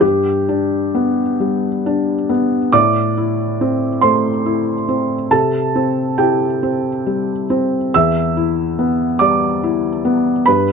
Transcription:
0.01 G2 G4
0.49 D4
0.95 B3
1.40 G3
1.86 D4
2.29 B3
2.73 A2 D5 D6
3.17 E4
3.61 C4
4.01 A3 C5 C6
4.46 E4
4.89 C4
5.31 C3 A4 A5
5.75 C4
6.18 E4 G4 G5
6.63 C4
7.07 G3
7.50 C4
7.94 E2 E5 E6
8.37 E4
8.79 B3
9.19 G3 D5 D6
9.63 E4
10.05 B3
10.46 G2 B4 B5

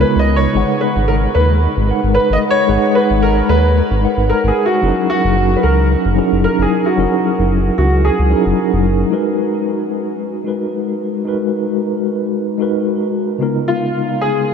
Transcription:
Already playing: C#3 G#3 B3 D#4 F4 A#4
0.01 B4
0.16 C#2 D#5
0.36 C#5
0.53 G#1 G#3 D#4 G#4 B4
0.57 F#5
0.81 B4
0.96 G#1
1.08 A#4
1.35 D#2 B4
1.77 G#1
1.87 G#3 D#4 A#4 B4 F#5
2.03 G#1
2.15 B4
2.30 G#1 D#5
2.51 C#5
2.67 G#1 G#3 D#4 G#4 B4
2.71 F#5
2.95 B4
3.10 G#1
3.23 A#4
3.49 D#2 B4
3.91 G#1
4.01 G#3 D#4 A#4 B4 F#5
4.17 G#1
4.30 A#4
4.44 G#1 G#4
4.66 F#4
4.81 F#1 F#3 C#4 D#4 E4 G#4 A#4
5.10 F#4
5.24 F#1
5.56 B4
5.63 C#2 A#4
6.05 F#1
6.15 F#3 C#4 D#4 E4 G#4 A#4
6.32 F#1
6.44 A#4
6.59 F#1 G#4
6.86 F#4
6.96 F#1 F#3 C#4 D#4 E4 G#4
7.00 A#4
7.39 F#1
7.78 C#2 F#4
8.05 G#4
8.19 C#2
8.29 F#3 C#4 D#4 E4 G#4 A#4
8.46 F#1
8.73 F#1
9.10 G#3 D#4 F#4 A#4 B4
10.44 G#3 D#4 F#4 A#4 B4
11.24 G#3 D#4 F#4 A#4
11.29 B4
12.58 G#3 D#4 F#4 A#4
12.62 B4
13.38 C#3 G#3 B3 D#4 F4
13.43 A#4
13.68 F4
14.21 G#4

